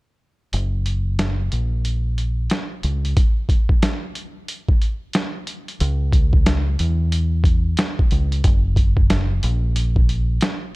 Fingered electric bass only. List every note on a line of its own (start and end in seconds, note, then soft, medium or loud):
0.54 1.48 F#1 loud
1.53 2.47 A#1 medium
2.84 3.13 C#2 medium
5.81 6.76 C#2 loud
6.80 7.74 E2 medium
8.12 8.41 C#2 medium
8.45 9.39 F#1 loud
9.44 10.38 A#1 loud